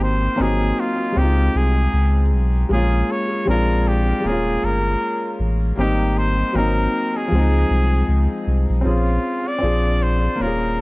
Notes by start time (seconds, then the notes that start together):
Already playing: G#1 A#3 C4 D#4 G4
0.03 C5
0.36 G#1 A#3 C4 D#4
0.41 F#3 G#4
0.80 F4
1.12 G#3 C4
1.16 C#2 D#4 G4
1.23 F4
1.55 C2 G#4
1.93 C#2
2.32 B1
2.69 A#1 G#3 A#3 C#4 G#4
2.75 F4
3.11 C#5
3.46 A#1 G#3 C4 D4 A#4
3.51 F4
3.87 G4
4.20 G#3 A#3
4.24 D#1 C#4 G#4
4.32 F4
4.63 G1 A#4
5.39 A1
5.75 G#1 G3 A#3 C4 G4
5.81 D#4
6.18 C5
6.53 G#1 F#3 A#3 C4 A#4
6.58 D#4
7.16 G#4
7.27 F3 G#3
7.32 C#2 C4
7.39 D#4
7.70 C2
8.08 C#2
8.47 C2
8.70 B1
8.81 C4 C#4 F4
8.86 A#1 F4 G#4
9.48 D5
9.59 C4 D4 F4
9.63 A#1 G#4
10.03 C5
10.36 A#3 C#4
10.40 D#1 F4 A#4
10.46 G#4